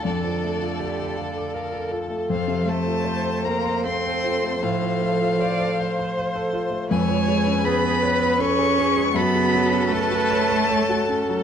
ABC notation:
X:1
M:3/4
L:1/16
Q:1/4=79
K:F
V:1 name="Violin"
d8- d2 z2 | f2 a4 b2 c'4 | f8- f2 z2 | [K:F#m] g4 b4 c'4 |
b4 a8 |]
V:2 name="Violin"
A12 | c12- | c12 | [K:F#m] B12 |
A12 |]
V:3 name="Viola"
A4 G2 A2 B2 A2- | A4 c2 B2 A4- | A4 d2 c6 | [K:F#m] c4 G2 B2 A2 G2 |
F4 B4 A4 |]
V:4 name="Grand piano"
F,, F, A, F d A f d' f A F A, | F,, C, A, F c A f c' f A F A, | A,, F, A, F c A f c' f A F A, | [K:F#m] ^E,, ^E, G, C B G c b c G C G, |
F,, C, F, C A F c a c F C F, |]
V:5 name="Cello"
D,8- D,2 z2 | F,2 A,4 B,2 C4 | F,8- F,2 z2 | [K:F#m] G,4 B,4 C4 |
B,4 A,8 |]